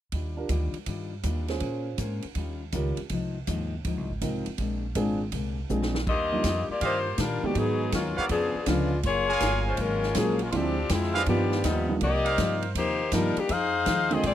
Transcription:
0.12 D#2 D#3 G3 D4 F4, kick, ride
0.37 D4 F4 G4 A#4
0.49 D2 D#3 G3 D4 F4, kick, hi-hat pedal, ride
0.73 muted upright bass stroke, ride
0.86 G2 D#3 G3 D4 F4, kick, ride
1.23 D#2 D#3 G3 D4 F4, kick, hi-hat pedal, ride
1.48 C#4 F4 G#4 C5, snare, ride
1.60 A#2 A#3 C#4 G#4 C5, kick, ride
1.98 G#2 A#3 C#4 G#4 C5, kick, hi-hat pedal, ride
2.22 muted upright bass stroke, ride
2.35 D#2 D#3 G3 C#4 F4, kick, ride
2.72 C#2 D#3 G3 C#4 F4 G4 A#4, kick, hi-hat pedal, ride
2.97 muted upright bass stroke, ride
3.09 C2 G#2 F3 C4, kick, ride
3.14 D#4
3.47 D#2 G#2 F3 C4 D#4, kick, hi-hat pedal, ride
3.85 D2 G#2 F3 C4 D#4, kick, ride
3.97 C2
4.10 G#1
4.21 C2 G#2 F3 C4 D#4 F4 A#4, kick, hi-hat pedal, ride
4.46 muted upright bass stroke, ride
4.58 A#1 A#2 G#3 C4 D4, kick, ride
4.95 G#1 A#2 G#3 C4 D4 F4 G#4, kick, hi-hat pedal, ride
5.32 C2 A#2 G#3 C4 D4, kick, ride
5.69 A#1 A#2 G#3 C4 D4 F4 G#4, hi-hat pedal
5.82 snare
5.95 snare
6.07 D#2 D#3 G3 A#3 D4 F4 G4 D#5, kick, crash
6.32 D#3 G3 A#3 D4 F4
6.43 F2 D#3 G3 D4 F4, kick, snare, hi-hat pedal, ride
6.70 A#3 F4 G4 D5, muted upright bass stroke
6.80 G2 D#3 G3 D4 F4 G4 C5 D5 D#5 F5, kick, ride
6.84 A#3 F4
7.18 A#2 D#3 G3 D4 F4 A#4, kick, snare, hi-hat pedal, ride
7.43 D#3 F3 G#3 A#3 B3 D4 F#4 G4 A#4, muted upright bass stroke
7.55 G#2 F#3 B3 D#4 G#4, kick, ride
7.92 D#2 G#2 F#3 A#3 B3 C#4 D#4 F4, kick, snare, hi-hat pedal, ride
8.17 D#3 G#3 B3 F#4 B4 C#5 D5 F5, muted upright bass stroke
8.29 F2 C#3 F3 B3 D4 G#4, kick, ride
8.55 muted upright bass stroke
8.66 C#2 C#3 D3 F3 G#3 B3 C#4 D4 F4, kick, snare, hi-hat pedal, ride
9.03 F#1 F#3 A#3 F4 G#4 C#5, kick, ride
9.29 G#4 A#4 F5 G#5
9.40 G1 F#3 A#3 F4 G#4, kick, snare, hi-hat pedal, ride
9.68 G#3 C#4 F4 C5
9.77 G#1 F#3 G#3 A#3 C#4 F4 A#4, kick, ride
9.81 G#4
10.03 snare
10.15 A#1 F3 F#3 G#3 A#3 C#4 F4 G#4, kick, snare, hi-hat pedal, ride
10.39 G#3 A#3 C#4 F4, ride
10.50 D2 D3 F3 G#3 C4 D4 E4 F4, kick, ride
10.55 F3 C4 D4 F4 G4
10.89 F2 D3 F3 G#3 C4 E4 F4, kick, snare, hi-hat pedal, ride
11.03 snare
11.15 G#3 C4 D4 F4 G4 B4 D#5 F5, snare
11.26 G2 D#3 F3 G3 B3 D4 D#4 F4 G4, kick, ride
11.52 snare
11.63 D#2 G2 F3 G3 B3 D#4, kick, snare, hi-hat pedal, ride
11.89 D#3 G3 A#3 D4 F4
12.00 C2 C3 F3 A#3 D#4 G4 D5 D#5, kick, ride
12.25 D#4 A#4 C5 F5, ride
12.38 G2 C3 F3 A#3 D#4, kick, snare, hi-hat pedal, ride
12.62 ride
12.75 D#2 C3 F3 A#3 D#4 G4 C5, kick, ride
13.12 G2 C3 D#3 F3 G3 A#3 D4 D#4 F4 A#4, kick, snare, hi-hat pedal, ride
13.37 D#3 A#3 D4 G4, muted upright bass stroke, ride
13.49 F2 F3 C4 D#4 G#4 C5 F5, kick, ride
13.86 D#2 F3 C4 D#4 G#4, kick, snare, hi-hat pedal, ride
14.10 D3 G#3 A#3 C4 F4 G#4 D#5, ride
14.23 A#1 A#2 G#3 C4 D4 F4 G#4 D5, kick, ride

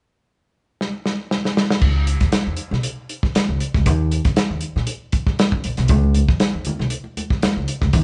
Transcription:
0.81 snare
1.06 snare
1.31 snare
1.45 snare
1.57 snare
1.70 snare
1.81 C#2, kick, crash
2.07 closed hi-hat
2.20 E2, kick, snare, closed hi-hat
2.32 muted upright bass stroke, snare, closed hi-hat
2.46 E2
2.57 closed hi-hat
2.71 B1, snare
2.83 closed hi-hat
3.09 closed hi-hat
3.23 kick, snare
3.35 muted upright bass stroke, snare, closed hi-hat
3.49 C#2
3.60 closed hi-hat
3.74 C#2, kick, snare
3.86 D#2, kick, closed hi-hat
4.11 closed hi-hat
4.25 F#2, kick, snare, closed hi-hat
4.36 muted upright bass stroke, snare, closed hi-hat
4.50 D#2
4.61 closed hi-hat
4.76 A#2, snare
4.87 closed hi-hat
5.12 kick, closed hi-hat
5.27 kick, snare
5.39 snare, closed hi-hat
5.52 F#2, kick
5.64 A#1, closed hi-hat
5.77 B1, snare, closed hi-hat
5.88 C#2, kick, closed hi-hat, muted conga, low conga
6.03 muted conga
6.14 closed hi-hat, high conga
6.28 E2, kick, snare
6.40 muted upright bass stroke, snare, closed hi-hat
6.54 E2
6.65 closed hi-hat, high conga, low conga
6.79 B1, snare
6.90 closed hi-hat
7.04 muted conga
7.17 closed hi-hat, high conga
7.30 kick, snare
7.42 muted upright bass stroke, snare, closed hi-hat, muted conga, high conga
7.56 C#2
7.68 closed hi-hat
7.81 C#2, kick, snare
7.93 D#2, kick, closed hi-hat, low conga

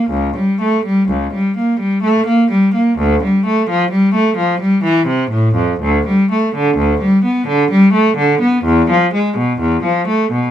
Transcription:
Already playing: A#3
0.10 C#2
0.37 G3
0.61 A3
0.86 G3
1.09 C#2
1.34 G3
1.57 A#3
1.80 G3
2.03 A3
2.27 A#3
2.51 G3
2.75 A#3
2.98 D2
3.24 G3
3.46 A3
3.70 F3
3.91 G3
4.14 A3
4.37 F3
4.60 G3
4.84 E3
5.07 C3
5.31 A2
5.55 F2
5.81 D2
6.07 G3
6.32 A3
6.55 D3
6.77 D2
7.01 G3
7.24 B3
7.47 D3
7.71 G3
7.93 A3
8.17 D3
8.41 B3
8.65 E2
8.90 F3
9.14 G#3
9.37 B2
9.59 E2
9.83 F3
10.07 A3
10.32 B2

